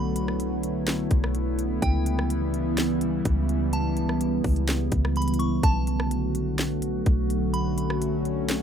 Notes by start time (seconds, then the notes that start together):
Already playing: B1 D3 F#3 A3 B3 E4 B5
0.16 closed hi-hat
0.28 cross-stick
0.40 closed hi-hat
0.63 closed hi-hat
0.87 snare, closed hi-hat
1.11 B1, kick, closed hi-hat
1.24 cross-stick
1.35 closed hi-hat
1.59 closed hi-hat
1.82 C#2 C#3 E3 G3 G5, kick, closed hi-hat
2.06 closed hi-hat
2.19 cross-stick
2.30 closed hi-hat
2.54 closed hi-hat
2.78 snare, closed hi-hat
3.01 closed hi-hat
3.25 C#2, kick, closed hi-hat
3.49 closed hi-hat
3.73 A5, closed hi-hat
3.97 closed hi-hat
4.09 cross-stick
4.21 closed hi-hat
4.44 C#2, kick, closed hi-hat, open hi-hat
4.56 closed hi-hat
4.68 snare, closed hi-hat
4.92 C#2, kick, closed hi-hat
5.05 cross-stick
5.16 B5, closed hi-hat
5.22 closed hi-hat
5.28 closed hi-hat
5.34 closed hi-hat
5.39 C#6, closed hi-hat
5.63 B1 D3 F#3 A3 F#4 A5, kick, closed hi-hat
5.87 closed hi-hat
6.00 cross-stick
6.11 closed hi-hat
6.35 closed hi-hat
6.59 snare, closed hi-hat
6.82 closed hi-hat
7.06 B1, kick, closed hi-hat
7.30 closed hi-hat
7.54 C#4 B5, closed hi-hat
7.78 closed hi-hat
7.90 cross-stick
8.02 closed hi-hat
8.25 closed hi-hat
8.49 snare, closed hi-hat